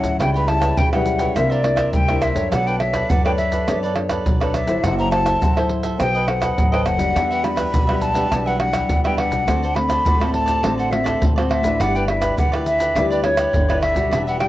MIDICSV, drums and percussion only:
0, 0, Header, 1, 4, 480
1, 0, Start_track
1, 0, Tempo, 579710
1, 166, Time_signature, 4, 2, 24, 8
1, 11995, End_track
2, 0, Start_track
2, 0, Title_t, "Pandeiro"
2, 30, Note_on_c, 9, 54, 67
2, 113, Note_off_c, 9, 54, 0
2, 169, Note_on_c, 9, 54, 81
2, 252, Note_off_c, 9, 54, 0
2, 295, Note_on_c, 9, 54, 32
2, 378, Note_off_c, 9, 54, 0
2, 398, Note_on_c, 9, 54, 53
2, 480, Note_off_c, 9, 54, 0
2, 511, Note_on_c, 9, 54, 64
2, 593, Note_off_c, 9, 54, 0
2, 641, Note_on_c, 9, 54, 88
2, 723, Note_off_c, 9, 54, 0
2, 768, Note_on_c, 9, 54, 38
2, 851, Note_off_c, 9, 54, 0
2, 873, Note_on_c, 9, 54, 59
2, 956, Note_off_c, 9, 54, 0
2, 987, Note_on_c, 9, 54, 71
2, 1070, Note_off_c, 9, 54, 0
2, 1125, Note_on_c, 9, 54, 85
2, 1208, Note_off_c, 9, 54, 0
2, 1255, Note_on_c, 9, 54, 37
2, 1338, Note_off_c, 9, 54, 0
2, 1359, Note_on_c, 9, 54, 60
2, 1442, Note_off_c, 9, 54, 0
2, 1466, Note_on_c, 9, 54, 72
2, 1549, Note_off_c, 9, 54, 0
2, 1599, Note_on_c, 9, 54, 78
2, 1682, Note_off_c, 9, 54, 0
2, 1727, Note_on_c, 9, 54, 34
2, 1810, Note_off_c, 9, 54, 0
2, 1836, Note_on_c, 9, 54, 57
2, 1918, Note_off_c, 9, 54, 0
2, 1952, Note_on_c, 9, 54, 64
2, 2035, Note_off_c, 9, 54, 0
2, 2087, Note_on_c, 9, 54, 86
2, 2170, Note_off_c, 9, 54, 0
2, 2213, Note_on_c, 9, 54, 33
2, 2296, Note_off_c, 9, 54, 0
2, 2319, Note_on_c, 9, 54, 55
2, 2402, Note_off_c, 9, 54, 0
2, 2431, Note_on_c, 9, 54, 69
2, 2514, Note_off_c, 9, 54, 0
2, 2566, Note_on_c, 9, 54, 84
2, 2649, Note_off_c, 9, 54, 0
2, 2697, Note_on_c, 9, 54, 35
2, 2780, Note_off_c, 9, 54, 0
2, 2800, Note_on_c, 9, 54, 56
2, 2883, Note_off_c, 9, 54, 0
2, 2914, Note_on_c, 9, 54, 66
2, 2997, Note_off_c, 9, 54, 0
2, 3045, Note_on_c, 9, 54, 85
2, 3128, Note_off_c, 9, 54, 0
2, 3177, Note_on_c, 9, 54, 35
2, 3260, Note_off_c, 9, 54, 0
2, 3275, Note_on_c, 9, 54, 57
2, 3358, Note_off_c, 9, 54, 0
2, 3390, Note_on_c, 9, 54, 70
2, 3473, Note_off_c, 9, 54, 0
2, 3527, Note_on_c, 9, 54, 82
2, 3610, Note_off_c, 9, 54, 0
2, 3654, Note_on_c, 9, 54, 36
2, 3737, Note_off_c, 9, 54, 0
2, 3760, Note_on_c, 9, 54, 60
2, 3843, Note_off_c, 9, 54, 0
2, 3871, Note_on_c, 9, 54, 68
2, 3954, Note_off_c, 9, 54, 0
2, 4005, Note_on_c, 9, 54, 81
2, 4088, Note_off_c, 9, 54, 0
2, 4135, Note_on_c, 9, 54, 33
2, 4218, Note_off_c, 9, 54, 0
2, 4242, Note_on_c, 9, 54, 58
2, 4324, Note_off_c, 9, 54, 0
2, 4355, Note_on_c, 9, 54, 68
2, 4438, Note_off_c, 9, 54, 0
2, 4488, Note_on_c, 9, 54, 86
2, 4571, Note_off_c, 9, 54, 0
2, 4613, Note_on_c, 9, 54, 36
2, 4696, Note_off_c, 9, 54, 0
2, 4715, Note_on_c, 9, 54, 62
2, 4798, Note_off_c, 9, 54, 0
2, 4831, Note_on_c, 9, 54, 72
2, 4913, Note_off_c, 9, 54, 0
2, 4966, Note_on_c, 9, 54, 76
2, 5049, Note_off_c, 9, 54, 0
2, 5090, Note_on_c, 9, 54, 32
2, 5173, Note_off_c, 9, 54, 0
2, 5200, Note_on_c, 9, 54, 57
2, 5282, Note_off_c, 9, 54, 0
2, 5313, Note_on_c, 9, 54, 74
2, 5396, Note_off_c, 9, 54, 0
2, 5449, Note_on_c, 9, 54, 83
2, 5532, Note_off_c, 9, 54, 0
2, 5578, Note_on_c, 9, 54, 37
2, 5661, Note_off_c, 9, 54, 0
2, 5678, Note_on_c, 9, 54, 54
2, 5761, Note_off_c, 9, 54, 0
2, 5790, Note_on_c, 9, 54, 67
2, 5873, Note_off_c, 9, 54, 0
2, 5930, Note_on_c, 9, 54, 77
2, 6013, Note_off_c, 9, 54, 0
2, 6059, Note_on_c, 9, 54, 34
2, 6142, Note_off_c, 9, 54, 0
2, 6161, Note_on_c, 9, 54, 58
2, 6244, Note_off_c, 9, 54, 0
2, 6270, Note_on_c, 9, 54, 68
2, 6353, Note_off_c, 9, 54, 0
2, 6407, Note_on_c, 9, 54, 87
2, 6490, Note_off_c, 9, 54, 0
2, 6532, Note_on_c, 9, 54, 35
2, 6614, Note_off_c, 9, 54, 0
2, 6636, Note_on_c, 9, 54, 60
2, 6718, Note_off_c, 9, 54, 0
2, 6750, Note_on_c, 9, 54, 75
2, 6833, Note_off_c, 9, 54, 0
2, 6887, Note_on_c, 9, 54, 83
2, 6970, Note_off_c, 9, 54, 0
2, 7015, Note_on_c, 9, 54, 33
2, 7098, Note_off_c, 9, 54, 0
2, 7118, Note_on_c, 9, 54, 60
2, 7201, Note_off_c, 9, 54, 0
2, 7231, Note_on_c, 9, 54, 76
2, 7314, Note_off_c, 9, 54, 0
2, 7363, Note_on_c, 9, 54, 82
2, 7446, Note_off_c, 9, 54, 0
2, 7492, Note_on_c, 9, 54, 35
2, 7574, Note_off_c, 9, 54, 0
2, 7601, Note_on_c, 9, 54, 60
2, 7684, Note_off_c, 9, 54, 0
2, 7714, Note_on_c, 9, 54, 68
2, 7797, Note_off_c, 9, 54, 0
2, 7848, Note_on_c, 9, 54, 80
2, 7930, Note_off_c, 9, 54, 0
2, 7975, Note_on_c, 9, 54, 36
2, 8058, Note_off_c, 9, 54, 0
2, 8082, Note_on_c, 9, 54, 57
2, 8165, Note_off_c, 9, 54, 0
2, 8194, Note_on_c, 9, 54, 69
2, 8277, Note_off_c, 9, 54, 0
2, 8330, Note_on_c, 9, 54, 89
2, 8413, Note_off_c, 9, 54, 0
2, 8457, Note_on_c, 9, 54, 36
2, 8540, Note_off_c, 9, 54, 0
2, 8560, Note_on_c, 9, 54, 61
2, 8642, Note_off_c, 9, 54, 0
2, 8675, Note_on_c, 9, 54, 72
2, 8758, Note_off_c, 9, 54, 0
2, 8809, Note_on_c, 9, 54, 85
2, 8892, Note_off_c, 9, 54, 0
2, 8938, Note_on_c, 9, 54, 37
2, 9021, Note_off_c, 9, 54, 0
2, 9046, Note_on_c, 9, 54, 61
2, 9129, Note_off_c, 9, 54, 0
2, 9158, Note_on_c, 9, 54, 73
2, 9241, Note_off_c, 9, 54, 0
2, 9290, Note_on_c, 9, 54, 83
2, 9372, Note_off_c, 9, 54, 0
2, 9421, Note_on_c, 9, 54, 36
2, 9504, Note_off_c, 9, 54, 0
2, 9528, Note_on_c, 9, 54, 57
2, 9611, Note_off_c, 9, 54, 0
2, 9638, Note_on_c, 9, 54, 69
2, 9721, Note_off_c, 9, 54, 0
2, 9775, Note_on_c, 9, 54, 83
2, 9858, Note_off_c, 9, 54, 0
2, 9901, Note_on_c, 9, 54, 34
2, 9984, Note_off_c, 9, 54, 0
2, 10004, Note_on_c, 9, 54, 60
2, 10087, Note_off_c, 9, 54, 0
2, 10116, Note_on_c, 9, 54, 69
2, 10198, Note_off_c, 9, 54, 0
2, 10253, Note_on_c, 9, 54, 85
2, 10336, Note_off_c, 9, 54, 0
2, 10379, Note_on_c, 9, 54, 35
2, 10462, Note_off_c, 9, 54, 0
2, 10484, Note_on_c, 9, 54, 62
2, 10567, Note_off_c, 9, 54, 0
2, 10600, Note_on_c, 9, 54, 71
2, 10683, Note_off_c, 9, 54, 0
2, 10733, Note_on_c, 9, 54, 81
2, 10816, Note_off_c, 9, 54, 0
2, 10860, Note_on_c, 9, 54, 33
2, 10943, Note_off_c, 9, 54, 0
2, 10961, Note_on_c, 9, 54, 65
2, 11044, Note_off_c, 9, 54, 0
2, 11074, Note_on_c, 9, 54, 72
2, 11157, Note_off_c, 9, 54, 0
2, 11213, Note_on_c, 9, 54, 80
2, 11296, Note_off_c, 9, 54, 0
2, 11343, Note_on_c, 9, 54, 36
2, 11425, Note_off_c, 9, 54, 0
2, 11448, Note_on_c, 9, 54, 57
2, 11531, Note_off_c, 9, 54, 0
2, 11559, Note_on_c, 9, 54, 67
2, 11642, Note_off_c, 9, 54, 0
2, 11696, Note_on_c, 9, 54, 84
2, 11779, Note_off_c, 9, 54, 0
2, 11824, Note_on_c, 9, 54, 36
2, 11906, Note_off_c, 9, 54, 0
2, 11927, Note_on_c, 9, 54, 59
2, 11995, Note_off_c, 9, 54, 0
2, 11995, End_track
3, 0, Start_track
3, 0, Title_t, "Tamborim"
3, 169, Note_on_c, 9, 60, 83
3, 252, Note_off_c, 9, 60, 0
3, 398, Note_on_c, 9, 60, 82
3, 480, Note_off_c, 9, 60, 0
3, 511, Note_on_c, 9, 60, 77
3, 593, Note_off_c, 9, 60, 0
3, 768, Note_on_c, 9, 60, 83
3, 851, Note_off_c, 9, 60, 0
3, 1125, Note_on_c, 9, 60, 85
3, 1208, Note_off_c, 9, 60, 0
3, 1359, Note_on_c, 9, 60, 84
3, 1442, Note_off_c, 9, 60, 0
3, 1466, Note_on_c, 9, 60, 89
3, 1549, Note_off_c, 9, 60, 0
3, 1727, Note_on_c, 9, 60, 78
3, 1810, Note_off_c, 9, 60, 0
3, 1836, Note_on_c, 9, 60, 85
3, 1918, Note_off_c, 9, 60, 0
3, 2087, Note_on_c, 9, 60, 80
3, 2170, Note_off_c, 9, 60, 0
3, 2319, Note_on_c, 9, 60, 82
3, 2402, Note_off_c, 9, 60, 0
3, 2431, Note_on_c, 9, 60, 81
3, 2514, Note_off_c, 9, 60, 0
3, 2697, Note_on_c, 9, 60, 87
3, 2780, Note_off_c, 9, 60, 0
3, 3045, Note_on_c, 9, 60, 84
3, 3128, Note_off_c, 9, 60, 0
3, 3275, Note_on_c, 9, 60, 84
3, 3358, Note_off_c, 9, 60, 0
3, 3390, Note_on_c, 9, 60, 88
3, 3473, Note_off_c, 9, 60, 0
3, 3654, Note_on_c, 9, 60, 86
3, 3737, Note_off_c, 9, 60, 0
3, 3760, Note_on_c, 9, 60, 84
3, 3843, Note_off_c, 9, 60, 0
3, 4005, Note_on_c, 9, 60, 82
3, 4088, Note_off_c, 9, 60, 0
3, 4242, Note_on_c, 9, 60, 79
3, 4324, Note_off_c, 9, 60, 0
3, 4355, Note_on_c, 9, 60, 83
3, 4438, Note_off_c, 9, 60, 0
3, 4613, Note_on_c, 9, 60, 87
3, 4696, Note_off_c, 9, 60, 0
3, 4966, Note_on_c, 9, 60, 81
3, 5049, Note_off_c, 9, 60, 0
3, 5200, Note_on_c, 9, 60, 82
3, 5282, Note_off_c, 9, 60, 0
3, 5313, Note_on_c, 9, 60, 88
3, 5396, Note_off_c, 9, 60, 0
3, 5578, Note_on_c, 9, 60, 80
3, 5661, Note_off_c, 9, 60, 0
3, 5678, Note_on_c, 9, 60, 83
3, 5761, Note_off_c, 9, 60, 0
3, 5930, Note_on_c, 9, 60, 76
3, 6013, Note_off_c, 9, 60, 0
3, 6161, Note_on_c, 9, 60, 80
3, 6244, Note_off_c, 9, 60, 0
3, 6270, Note_on_c, 9, 60, 78
3, 6353, Note_off_c, 9, 60, 0
3, 6532, Note_on_c, 9, 60, 85
3, 6614, Note_off_c, 9, 60, 0
3, 6887, Note_on_c, 9, 60, 83
3, 6970, Note_off_c, 9, 60, 0
3, 7118, Note_on_c, 9, 60, 88
3, 7201, Note_off_c, 9, 60, 0
3, 7231, Note_on_c, 9, 60, 88
3, 7314, Note_off_c, 9, 60, 0
3, 7492, Note_on_c, 9, 60, 83
3, 7574, Note_off_c, 9, 60, 0
3, 7601, Note_on_c, 9, 60, 85
3, 7684, Note_off_c, 9, 60, 0
3, 7848, Note_on_c, 9, 60, 83
3, 7930, Note_off_c, 9, 60, 0
3, 8082, Note_on_c, 9, 60, 78
3, 8165, Note_off_c, 9, 60, 0
3, 8194, Note_on_c, 9, 60, 79
3, 8277, Note_off_c, 9, 60, 0
3, 8457, Note_on_c, 9, 60, 85
3, 8540, Note_off_c, 9, 60, 0
3, 8809, Note_on_c, 9, 60, 85
3, 8892, Note_off_c, 9, 60, 0
3, 9046, Note_on_c, 9, 60, 80
3, 9129, Note_off_c, 9, 60, 0
3, 9158, Note_on_c, 9, 60, 88
3, 9241, Note_off_c, 9, 60, 0
3, 9421, Note_on_c, 9, 60, 90
3, 9504, Note_off_c, 9, 60, 0
3, 9528, Note_on_c, 9, 60, 84
3, 9611, Note_off_c, 9, 60, 0
3, 9775, Note_on_c, 9, 60, 83
3, 9858, Note_off_c, 9, 60, 0
3, 10004, Note_on_c, 9, 60, 78
3, 10087, Note_off_c, 9, 60, 0
3, 10116, Note_on_c, 9, 60, 83
3, 10198, Note_off_c, 9, 60, 0
3, 10379, Note_on_c, 9, 60, 89
3, 10462, Note_off_c, 9, 60, 0
3, 10733, Note_on_c, 9, 60, 77
3, 10816, Note_off_c, 9, 60, 0
3, 10961, Note_on_c, 9, 60, 86
3, 11044, Note_off_c, 9, 60, 0
3, 11074, Note_on_c, 9, 60, 97
3, 11157, Note_off_c, 9, 60, 0
3, 11343, Note_on_c, 9, 60, 87
3, 11425, Note_off_c, 9, 60, 0
3, 11448, Note_on_c, 9, 60, 86
3, 11531, Note_off_c, 9, 60, 0
3, 11696, Note_on_c, 9, 60, 86
3, 11779, Note_off_c, 9, 60, 0
3, 11927, Note_on_c, 9, 60, 79
3, 11995, Note_off_c, 9, 60, 0
3, 11995, End_track
4, 0, Start_track
4, 0, Title_t, "Drums"
4, 30, Note_on_c, 9, 82, 83
4, 30, Note_on_c, 9, 87, 34
4, 113, Note_off_c, 9, 82, 0
4, 113, Note_off_c, 9, 87, 0
4, 169, Note_on_c, 9, 82, 82
4, 169, Note_on_c, 9, 87, 58
4, 252, Note_off_c, 9, 82, 0
4, 252, Note_off_c, 9, 87, 0
4, 295, Note_on_c, 9, 82, 35
4, 378, Note_off_c, 9, 82, 0
4, 511, Note_on_c, 9, 82, 82
4, 511, Note_on_c, 9, 87, 31
4, 593, Note_off_c, 9, 82, 0
4, 593, Note_off_c, 9, 87, 0
4, 641, Note_on_c, 9, 82, 80
4, 641, Note_on_c, 9, 87, 108
4, 723, Note_off_c, 9, 82, 0
4, 723, Note_off_c, 9, 87, 0
4, 768, Note_on_c, 9, 82, 35
4, 851, Note_off_c, 9, 82, 0
4, 873, Note_on_c, 9, 82, 73
4, 956, Note_off_c, 9, 82, 0
4, 987, Note_on_c, 9, 82, 84
4, 987, Note_on_c, 9, 87, 36
4, 1070, Note_off_c, 9, 82, 0
4, 1070, Note_off_c, 9, 87, 0
4, 1125, Note_on_c, 9, 82, 84
4, 1125, Note_on_c, 9, 87, 59
4, 1208, Note_off_c, 9, 82, 0
4, 1208, Note_off_c, 9, 87, 0
4, 1255, Note_on_c, 9, 82, 34
4, 1338, Note_off_c, 9, 82, 0
4, 1466, Note_on_c, 9, 82, 91
4, 1466, Note_on_c, 9, 87, 39
4, 1549, Note_off_c, 9, 82, 0
4, 1549, Note_off_c, 9, 87, 0
4, 1599, Note_on_c, 9, 82, 77
4, 1599, Note_on_c, 9, 87, 99
4, 1682, Note_off_c, 9, 82, 0
4, 1682, Note_off_c, 9, 87, 0
4, 1727, Note_on_c, 9, 82, 34
4, 1810, Note_off_c, 9, 82, 0
4, 1836, Note_on_c, 9, 82, 69
4, 1918, Note_off_c, 9, 82, 0
4, 1952, Note_on_c, 9, 82, 79
4, 1952, Note_on_c, 9, 87, 36
4, 2035, Note_off_c, 9, 82, 0
4, 2035, Note_off_c, 9, 87, 0
4, 2087, Note_on_c, 9, 82, 82
4, 2087, Note_on_c, 9, 87, 59
4, 2170, Note_off_c, 9, 82, 0
4, 2170, Note_off_c, 9, 87, 0
4, 2213, Note_on_c, 9, 82, 31
4, 2296, Note_off_c, 9, 82, 0
4, 2431, Note_on_c, 9, 82, 86
4, 2431, Note_on_c, 9, 87, 32
4, 2514, Note_off_c, 9, 82, 0
4, 2514, Note_off_c, 9, 87, 0
4, 2566, Note_on_c, 9, 82, 91
4, 2566, Note_on_c, 9, 87, 110
4, 2649, Note_off_c, 9, 82, 0
4, 2649, Note_off_c, 9, 87, 0
4, 2697, Note_on_c, 9, 82, 36
4, 2780, Note_off_c, 9, 82, 0
4, 2800, Note_on_c, 9, 82, 68
4, 2883, Note_off_c, 9, 82, 0
4, 2914, Note_on_c, 9, 82, 81
4, 2914, Note_on_c, 9, 87, 38
4, 2997, Note_off_c, 9, 82, 0
4, 2997, Note_off_c, 9, 87, 0
4, 3045, Note_on_c, 9, 82, 86
4, 3045, Note_on_c, 9, 87, 61
4, 3128, Note_off_c, 9, 82, 0
4, 3128, Note_off_c, 9, 87, 0
4, 3177, Note_on_c, 9, 82, 33
4, 3260, Note_off_c, 9, 82, 0
4, 3390, Note_on_c, 9, 82, 85
4, 3390, Note_on_c, 9, 87, 34
4, 3473, Note_off_c, 9, 82, 0
4, 3473, Note_off_c, 9, 87, 0
4, 3527, Note_on_c, 9, 82, 78
4, 3527, Note_on_c, 9, 87, 93
4, 3610, Note_off_c, 9, 82, 0
4, 3610, Note_off_c, 9, 87, 0
4, 3654, Note_on_c, 9, 82, 33
4, 3737, Note_off_c, 9, 82, 0
4, 3760, Note_on_c, 9, 82, 68
4, 3843, Note_off_c, 9, 82, 0
4, 3871, Note_on_c, 9, 82, 83
4, 3871, Note_on_c, 9, 87, 31
4, 3954, Note_off_c, 9, 82, 0
4, 3954, Note_off_c, 9, 87, 0
4, 4005, Note_on_c, 9, 82, 80
4, 4005, Note_on_c, 9, 87, 59
4, 4088, Note_off_c, 9, 82, 0
4, 4088, Note_off_c, 9, 87, 0
4, 4135, Note_on_c, 9, 82, 31
4, 4218, Note_off_c, 9, 82, 0
4, 4355, Note_on_c, 9, 82, 84
4, 4355, Note_on_c, 9, 87, 34
4, 4438, Note_off_c, 9, 82, 0
4, 4438, Note_off_c, 9, 87, 0
4, 4488, Note_on_c, 9, 82, 87
4, 4488, Note_on_c, 9, 87, 106
4, 4571, Note_off_c, 9, 82, 0
4, 4571, Note_off_c, 9, 87, 0
4, 4613, Note_on_c, 9, 82, 35
4, 4696, Note_off_c, 9, 82, 0
4, 4831, Note_on_c, 9, 82, 87
4, 4831, Note_on_c, 9, 87, 34
4, 4913, Note_off_c, 9, 82, 0
4, 4913, Note_off_c, 9, 87, 0
4, 4966, Note_on_c, 9, 82, 80
4, 4966, Note_on_c, 9, 87, 60
4, 5049, Note_off_c, 9, 82, 0
4, 5049, Note_off_c, 9, 87, 0
4, 5090, Note_on_c, 9, 82, 33
4, 5173, Note_off_c, 9, 82, 0
4, 5313, Note_on_c, 9, 82, 85
4, 5313, Note_on_c, 9, 87, 36
4, 5396, Note_off_c, 9, 82, 0
4, 5396, Note_off_c, 9, 87, 0
4, 5449, Note_on_c, 9, 82, 79
4, 5449, Note_on_c, 9, 87, 99
4, 5532, Note_off_c, 9, 82, 0
4, 5532, Note_off_c, 9, 87, 0
4, 5578, Note_on_c, 9, 82, 36
4, 5661, Note_off_c, 9, 82, 0
4, 5678, Note_on_c, 9, 82, 66
4, 5761, Note_off_c, 9, 82, 0
4, 5790, Note_on_c, 9, 82, 82
4, 5790, Note_on_c, 9, 87, 32
4, 5873, Note_off_c, 9, 82, 0
4, 5873, Note_off_c, 9, 87, 0
4, 5930, Note_on_c, 9, 82, 81
4, 5930, Note_on_c, 9, 87, 60
4, 6013, Note_off_c, 9, 82, 0
4, 6013, Note_off_c, 9, 87, 0
4, 6059, Note_on_c, 9, 82, 34
4, 6142, Note_off_c, 9, 82, 0
4, 6161, Note_on_c, 9, 82, 71
4, 6244, Note_off_c, 9, 82, 0
4, 6270, Note_on_c, 9, 82, 80
4, 6270, Note_on_c, 9, 87, 36
4, 6353, Note_off_c, 9, 82, 0
4, 6353, Note_off_c, 9, 87, 0
4, 6407, Note_on_c, 9, 82, 90
4, 6407, Note_on_c, 9, 87, 100
4, 6490, Note_off_c, 9, 82, 0
4, 6490, Note_off_c, 9, 87, 0
4, 6532, Note_on_c, 9, 82, 37
4, 6614, Note_off_c, 9, 82, 0
4, 6636, Note_on_c, 9, 82, 73
4, 6718, Note_off_c, 9, 82, 0
4, 6750, Note_on_c, 9, 82, 84
4, 6750, Note_on_c, 9, 87, 37
4, 6833, Note_off_c, 9, 82, 0
4, 6833, Note_off_c, 9, 87, 0
4, 6887, Note_on_c, 9, 82, 78
4, 6887, Note_on_c, 9, 87, 57
4, 6970, Note_off_c, 9, 82, 0
4, 6970, Note_off_c, 9, 87, 0
4, 7015, Note_on_c, 9, 82, 35
4, 7098, Note_off_c, 9, 82, 0
4, 7231, Note_on_c, 9, 82, 89
4, 7231, Note_on_c, 9, 87, 40
4, 7314, Note_off_c, 9, 82, 0
4, 7314, Note_off_c, 9, 87, 0
4, 7363, Note_on_c, 9, 82, 80
4, 7363, Note_on_c, 9, 87, 92
4, 7446, Note_off_c, 9, 82, 0
4, 7446, Note_off_c, 9, 87, 0
4, 7492, Note_on_c, 9, 82, 35
4, 7574, Note_off_c, 9, 82, 0
4, 7714, Note_on_c, 9, 82, 81
4, 7714, Note_on_c, 9, 87, 33
4, 7797, Note_off_c, 9, 82, 0
4, 7797, Note_off_c, 9, 87, 0
4, 7848, Note_on_c, 9, 82, 80
4, 7848, Note_on_c, 9, 87, 59
4, 7930, Note_off_c, 9, 82, 0
4, 7930, Note_off_c, 9, 87, 0
4, 7975, Note_on_c, 9, 82, 34
4, 8058, Note_off_c, 9, 82, 0
4, 8194, Note_on_c, 9, 82, 77
4, 8194, Note_on_c, 9, 87, 34
4, 8277, Note_off_c, 9, 82, 0
4, 8277, Note_off_c, 9, 87, 0
4, 8330, Note_on_c, 9, 82, 83
4, 8330, Note_on_c, 9, 87, 106
4, 8413, Note_off_c, 9, 82, 0
4, 8413, Note_off_c, 9, 87, 0
4, 8457, Note_on_c, 9, 82, 39
4, 8540, Note_off_c, 9, 82, 0
4, 8675, Note_on_c, 9, 82, 91
4, 8675, Note_on_c, 9, 87, 35
4, 8758, Note_off_c, 9, 82, 0
4, 8758, Note_off_c, 9, 87, 0
4, 8809, Note_on_c, 9, 82, 90
4, 8809, Note_on_c, 9, 87, 61
4, 8892, Note_off_c, 9, 82, 0
4, 8892, Note_off_c, 9, 87, 0
4, 8938, Note_on_c, 9, 82, 35
4, 9021, Note_off_c, 9, 82, 0
4, 9158, Note_on_c, 9, 82, 86
4, 9158, Note_on_c, 9, 87, 37
4, 9241, Note_off_c, 9, 82, 0
4, 9241, Note_off_c, 9, 87, 0
4, 9290, Note_on_c, 9, 82, 80
4, 9290, Note_on_c, 9, 87, 101
4, 9372, Note_off_c, 9, 82, 0
4, 9372, Note_off_c, 9, 87, 0
4, 9421, Note_on_c, 9, 82, 36
4, 9504, Note_off_c, 9, 82, 0
4, 9638, Note_on_c, 9, 82, 88
4, 9638, Note_on_c, 9, 87, 35
4, 9721, Note_off_c, 9, 82, 0
4, 9721, Note_off_c, 9, 87, 0
4, 9775, Note_on_c, 9, 82, 85
4, 9775, Note_on_c, 9, 87, 60
4, 9858, Note_off_c, 9, 82, 0
4, 9858, Note_off_c, 9, 87, 0
4, 9901, Note_on_c, 9, 82, 34
4, 9984, Note_off_c, 9, 82, 0
4, 10116, Note_on_c, 9, 82, 77
4, 10116, Note_on_c, 9, 87, 35
4, 10198, Note_off_c, 9, 82, 0
4, 10198, Note_off_c, 9, 87, 0
4, 10253, Note_on_c, 9, 82, 92
4, 10253, Note_on_c, 9, 87, 101
4, 10336, Note_off_c, 9, 82, 0
4, 10336, Note_off_c, 9, 87, 0
4, 10379, Note_on_c, 9, 82, 34
4, 10462, Note_off_c, 9, 82, 0
4, 10484, Note_on_c, 9, 82, 70
4, 10567, Note_off_c, 9, 82, 0
4, 10600, Note_on_c, 9, 82, 88
4, 10600, Note_on_c, 9, 87, 35
4, 10683, Note_off_c, 9, 82, 0
4, 10683, Note_off_c, 9, 87, 0
4, 10733, Note_on_c, 9, 82, 81
4, 10733, Note_on_c, 9, 87, 61
4, 10816, Note_off_c, 9, 82, 0
4, 10816, Note_off_c, 9, 87, 0
4, 10860, Note_on_c, 9, 82, 35
4, 10943, Note_off_c, 9, 82, 0
4, 11074, Note_on_c, 9, 82, 91
4, 11074, Note_on_c, 9, 87, 37
4, 11157, Note_off_c, 9, 82, 0
4, 11157, Note_off_c, 9, 87, 0
4, 11213, Note_on_c, 9, 82, 85
4, 11213, Note_on_c, 9, 87, 109
4, 11296, Note_off_c, 9, 82, 0
4, 11296, Note_off_c, 9, 87, 0
4, 11343, Note_on_c, 9, 82, 35
4, 11425, Note_off_c, 9, 82, 0
4, 11559, Note_on_c, 9, 82, 79
4, 11559, Note_on_c, 9, 87, 36
4, 11642, Note_off_c, 9, 82, 0
4, 11642, Note_off_c, 9, 87, 0
4, 11696, Note_on_c, 9, 82, 81
4, 11696, Note_on_c, 9, 87, 65
4, 11779, Note_off_c, 9, 82, 0
4, 11779, Note_off_c, 9, 87, 0
4, 11824, Note_on_c, 9, 82, 36
4, 11906, Note_off_c, 9, 82, 0
4, 11995, End_track
0, 0, End_of_file